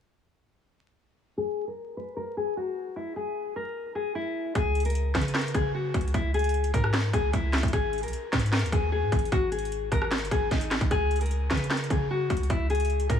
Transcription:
1.37 G#4
1.67 A#4
1.97 B4
2.17 A#4
2.37 G#4
2.57 F#4
2.96 E4
3.16 G#4
3.56 A#4
3.95 G#4
4.15 E4
4.55 C#2 G#4, kick, closed hi-hat
4.75 closed hi-hat
4.80 closed hi-hat
4.85 A#4, closed hi-hat
4.90 closed hi-hat
4.95 closed hi-hat
5.15 C#3 B4, kick, snare, clap, closed hi-hat
5.21 closed hi-hat
5.28 closed hi-hat
5.35 A#4, snare, clap, closed hi-hat
5.41 closed hi-hat
5.48 closed hi-hat
5.54 C#3 G#4, kick, closed hi-hat
5.75 F#4
5.94 C#2, kick, closed hi-hat
6.01 closed hi-hat
6.08 closed hi-hat
6.14 C#2 E4, kick, closed hi-hat
6.34 G#4, closed hi-hat
6.39 closed hi-hat
6.44 closed hi-hat
6.49 closed hi-hat
6.54 closed hi-hat
6.64 closed hi-hat
6.74 G#2 A#4, kick, closed hi-hat
6.84 cross-stick
6.94 snare, clap, closed hi-hat
7.13 C#2 G#4, kick, closed hi-hat
7.33 C#2 E4, kick, closed hi-hat
7.53 snare, clap, closed hi-hat
7.58 closed hi-hat
7.63 C#2, kick, closed hi-hat
7.68 closed hi-hat
7.73 G#1 G#4, kick, closed hi-hat
7.93 closed hi-hat
7.98 closed hi-hat
8.03 B1 A#4, closed hi-hat
8.08 closed hi-hat
8.13 closed hi-hat
8.32 G#2 B4, kick, snare, clap, closed hi-hat
8.39 closed hi-hat
8.46 closed hi-hat
8.52 A#4, snare, clap, closed hi-hat
8.59 D#2, closed hi-hat
8.66 closed hi-hat
8.72 D#2 G#4, kick, closed hi-hat
8.92 G#4
9.02 G#2
9.12 G#1, kick, closed hi-hat
9.19 closed hi-hat
9.25 closed hi-hat
9.32 G#1 F#4, kick, closed hi-hat
9.52 G#4, closed hi-hat
9.59 closed hi-hat
9.65 closed hi-hat
9.72 closed hi-hat
9.92 G#1 A#4, kick, cross-stick, closed hi-hat
10.02 cross-stick
10.11 snare, clap, closed hi-hat
10.18 F#1, closed hi-hat
10.25 closed hi-hat
10.31 G#1 G#4, kick, closed hi-hat
10.51 G#1 D#4, kick, snare, closed hi-hat
10.61 closed hi-hat
10.71 snare, clap, closed hi-hat
10.81 G#1, kick, closed hi-hat
10.91 C#2 G#4, kick, closed hi-hat
11.11 closed hi-hat
11.16 closed hi-hat
11.21 A#4, closed hi-hat
11.26 closed hi-hat
11.31 closed hi-hat
11.51 C#3 B4, kick, snare, clap, closed hi-hat
11.57 closed hi-hat
11.64 closed hi-hat
11.70 A#4, snare, clap, closed hi-hat
11.77 closed hi-hat
11.84 closed hi-hat
11.90 C#3 G#4, kick, closed hi-hat
12.11 F#4
12.30 C#2, kick, closed hi-hat
12.37 closed hi-hat
12.43 closed hi-hat
12.50 C#2 E4, kick, closed hi-hat
12.70 G#4, closed hi-hat
12.75 closed hi-hat
12.80 closed hi-hat
12.85 closed hi-hat
12.90 closed hi-hat
13.00 closed hi-hat
13.09 G#2 A#4, kick, closed hi-hat

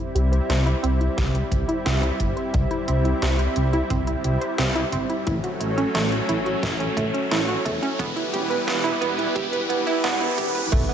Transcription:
Already playing: G3 C4 E4, riser
0.00 E4
0.15 C2 G4, closed hi-hat
0.32 C5, closed hi-hat
0.49 C2 C4, snare, closed hi-hat
0.66 E4, closed hi-hat
0.83 C2 C4, closed hi-hat
1.00 E4, closed hi-hat
1.17 C2 G4, kick, snare, closed hi-hat
1.34 C5, closed hi-hat
1.52 C2 C4, kick, closed hi-hat
1.68 E4, closed hi-hat
1.85 C2 C4, snare, closed hi-hat
2.03 E4, closed hi-hat
2.20 G1 G4, kick, closed hi-hat
2.37 C5, closed hi-hat
2.54 C2 C4, kick, closed hi-hat
2.71 E4, closed hi-hat
2.88 C2 C4, closed hi-hat
3.05 E4, closed hi-hat
3.22 C2 G4, snare, closed hi-hat
3.39 C5, closed hi-hat
3.56 C2 C4, closed hi-hat
3.73 E4, closed hi-hat
3.90 C2 C4, kick, closed hi-hat
4.07 E4, closed hi-hat
4.24 C2 G4, closed hi-hat
4.41 C5, closed hi-hat
4.58 C2 C4, snare, closed hi-hat
4.75 E4, closed hi-hat
4.92 G1 C4, kick, closed hi-hat
5.09 E4, closed hi-hat
5.26 A1 F#3 A3 C#4 E4, kick, closed hi-hat
5.44 F#4, closed hi-hat
5.60 A1 A3, closed hi-hat
5.78 C#4, closed hi-hat
5.95 A1 A3, snare, closed hi-hat
6.12 C#4, closed hi-hat
6.29 A1 E4, closed hi-hat
6.46 F#4, closed hi-hat
6.63 A1 A3, kick, snare, closed hi-hat
6.80 C#4, closed hi-hat
6.97 A1 A3, kick, closed hi-hat
7.14 C#4, closed hi-hat
7.31 A1 E4, snare, closed hi-hat
7.48 F#4, closed hi-hat
7.65 E2 A3, kick, closed hi-hat
7.82 C#4, closed hi-hat
7.99 E1 E3 G3 B3, kick, closed hi-hat
8.16 E4, closed hi-hat
8.33 E1 G4, closed hi-hat
8.50 B4, closed hi-hat
8.67 E1 B3, snare, closed hi-hat
8.84 E4, closed hi-hat
9.01 E1 B3, closed hi-hat
9.18 E4, closed hi-hat
9.35 E1 G4, kick, closed hi-hat, swell
9.53 B4, closed hi-hat
9.69 E1 B3, closed hi-hat
9.87 E4, closed hi-hat
10.04 E1 B3, snare, closed hi-hat
10.21 E4, closed hi-hat
10.38 E1 G4, kick, closed hi-hat
10.55 B4, closed hi-hat
10.72 B1 D3 A3 B3, kick, closed hi-hat, crash, impact
10.89 B3

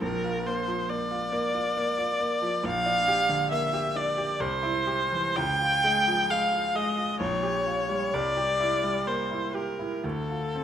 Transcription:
0.02 A#1 A#4
0.24 F4
0.46 A#3 C5
0.67 F3
0.89 A#3 D5
1.11 F4
1.32 A#3
1.54 F4
1.77 A#3
1.98 F4
2.20 A#3
2.42 F3
2.64 A#1 F5
2.86 D4
3.08 G4
3.29 D3
3.51 A#3 E5
3.73 G4
3.96 D4 D5
4.18 G4
4.40 C2 C5
4.63 E4
4.87 G4
5.12 E3
5.37 C#2 G5
5.61 F4
5.84 G#3
6.08 F3
6.30 G#3 F5
6.52 F4
6.75 G#3 D#5
6.98 F4
7.20 A#1 C#5
7.43 G4
7.66 F4
7.89 G3
8.14 C2 D5
8.37 G4
8.60 E4
8.83 G3
9.07 A#3 C5
9.31 E4
9.55 G4 A#4
9.79 E4
10.04 D2 A4
10.30 F4
10.55 C4

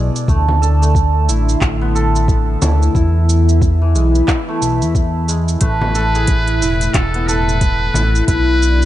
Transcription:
Already playing: B1 B2 E3 G#3 B3 E4 D5
0.16 shaker
0.28 D2 D3 A3, kick, shaker
0.40 A3
0.48 frame drum
0.62 A4, shaker
0.82 A3 E5, shaker
0.95 kick, shaker
1.28 A1 E4, shaker
1.34 C6
1.49 shaker
1.61 A1, kick, clap, shaker
1.81 B3
1.95 A4, shaker
2.16 shaker
2.28 kick, shaker
2.62 D2 E4, frame drum, shaker
2.82 shaker
2.95 E2 E3 E4, kick, shaker
3.22 B3
3.29 shaker
3.49 shaker
3.62 kick, shaker
3.70 B5
3.82 E3
3.95 B1 G#3, shaker
4.15 shaker
4.28 E4, kick, clap, shaker
4.48 A3
4.61 B1, shaker
4.81 E2, shaker
4.95 kick, shaker
5.28 G#3, shaker
5.48 shaker
5.61 A1 A2 A3 B4, kick, closed hi-hat, shaker
5.75 A3 E4
5.81 frame drum
5.95 A4, shaker
6.15 G#4, shaker
6.27 kick, closed hi-hat, shaker
6.48 closed hi-hat
6.61 E1 E4, shaker
6.81 closed hi-hat, shaker
6.94 E1 A4, kick, clap, closed hi-hat, shaker
7.14 B3, closed hi-hat
7.28 A4 B4, shaker
7.49 shaker
7.61 kick, closed hi-hat, shaker
7.94 A1 E4, frame drum, shaker
8.15 shaker
8.28 B1 B2 E4 B4, kick, closed hi-hat, shaker
8.50 D5
8.56 D4
8.62 shaker

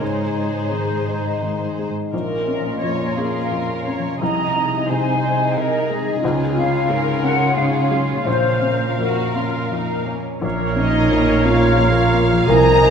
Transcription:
Already playing: G#3 G#4 G#5
0.00 G#2 D#4 G#4 C5 C#5
0.24 G#3
0.37 D#4
0.49 D#4
0.71 D#3 G#4 C5
0.95 D#4
1.08 D#4
1.19 D#5
1.42 D#3 G#4
1.65 D#4
1.79 G#3
1.89 G#3
2.12 A#1 A#2 C#4 F4 A#4
2.35 C#4
2.48 C#4 D#5
2.60 F3
2.82 F2 F4 C#5
3.06 C#5
3.17 C#4 G#4 F5
3.28 F4
3.50 F2 A#4 C#5
3.75 C#4
3.86 C#4 C#5
3.98 F3
4.20 C2 C3 D#4 G#4 D#5 A#5
4.45 G#3
4.56 D#4
4.68 D#4
4.89 C3 G#3 C5 G#5
5.14 G#4
5.25 D#4
5.36 D#5
5.57 C3 G#4 A#4 D#5
5.80 D#4
5.89 G#3 G#4
6.01 G#3
6.22 C#2 C#3 C#4 F4
6.45 C#4
6.56 C#4 F5
6.89 G#2 G#4 A#4
7.22 C#4 F#5
7.33 F5
7.55 G#2 G#4 F5
7.91 F#3 G#3
8.02 C#4
8.25 A#1 A#2 A#4 C5 F5
8.51 A#3
8.62 C#4
8.76 C#4
8.99 F2 F#4 A#4
9.24 A#4
9.35 C#4 F4
9.48 C#5
9.71 F2 D#4 A#4
9.94 C#4
10.06 A#3 C#4
10.18 A#3
10.41 A#1 A#2 A#4 C#5 F5 A#5
10.59 F3
10.76 A#3 C#4 D#4 D#5
10.95 C#4
11.11 F2 A#4
11.28 C#4
11.45 C#4 F4 C#5 F5
11.62 A#5
11.79 F2 C#5
12.14 A#3 C#4
12.32 F3
12.48 C2 C3 A#4 C5 D#5 G#5 A#5
12.66 C4
12.82 G#3 D#4

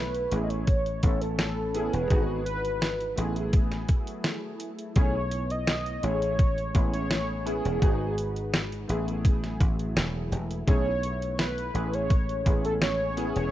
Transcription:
Already playing: B1 A3 B3 E4 B4
0.14 closed hi-hat
0.31 A1 A3 C#4 E4 G#4, closed hi-hat
0.43 D#5
0.50 C#5, closed hi-hat
0.67 E3 A3 C#4, kick, closed hi-hat
0.86 closed hi-hat
1.03 A1 B3 C#4 E4 A4, kick, closed hi-hat
1.21 A4, closed hi-hat
1.38 A4, snare, closed hi-hat
1.74 B3 C#4 E4 G#4, closed hi-hat
1.93 E1 B4, closed hi-hat
2.10 G#1 B3 D#4 F#4 G#4 B4, kick, closed hi-hat
2.45 B4, closed hi-hat
2.65 closed hi-hat
2.82 snare, closed hi-hat
3.00 closed hi-hat
3.16 A1 F#3 A3 B3 E4 G#4, closed hi-hat
3.36 closed hi-hat
3.53 kick, closed hi-hat
3.72 snare, closed hi-hat
3.89 kick, closed hi-hat
4.07 closed hi-hat
4.24 snare, closed hi-hat
4.60 closed hi-hat
4.79 closed hi-hat
4.96 B1 A3 B3 C#4 E4 G#4 C#5, kick, closed hi-hat
5.31 closed hi-hat
5.50 D#5, closed hi-hat
5.67 snare, closed hi-hat
5.86 closed hi-hat
6.03 A1 A3 C#4 E4 G#4 C#5, closed hi-hat
6.22 closed hi-hat
6.39 G#3 A3 C#4, kick, closed hi-hat
6.58 closed hi-hat
6.74 A1 B3 C#4 E4 G#4, kick, closed hi-hat
6.94 C#5, closed hi-hat
7.11 snare, closed hi-hat
7.45 B3 C#4 E4 G#4, closed hi-hat
7.65 E1, closed hi-hat
7.81 G#1 B3 D#4 F#4 G#4 B4, kick, closed hi-hat
8.18 closed hi-hat
8.36 closed hi-hat
8.54 snare, closed hi-hat
8.72 closed hi-hat
8.88 A1 F#3 A3 B3 E4 G#4, closed hi-hat
9.08 closed hi-hat
9.25 kick, closed hi-hat
9.44 snare, closed hi-hat
9.61 A1, kick, closed hi-hat
9.79 closed hi-hat
9.96 E1, snare, closed hi-hat
10.32 E1, closed hi-hat
10.51 closed hi-hat
10.67 B1 A3 B3 C#4 E4 G#4 C#5, kick, closed hi-hat
11.03 closed hi-hat
11.22 closed hi-hat
11.39 B4, snare, closed hi-hat
11.58 closed hi-hat
11.74 A1 A3 C#4 E4 G#4, closed hi-hat
11.93 C#5, closed hi-hat
12.10 G#3 C#4, kick, closed hi-hat
12.29 closed hi-hat
12.45 A1 B3 C#4 E4 G#4, kick, closed hi-hat
12.65 A4, closed hi-hat
12.82 C#5, snare, closed hi-hat
13.16 B3 C#4 E4 G#4, closed hi-hat
13.36 E1 C#5, closed hi-hat

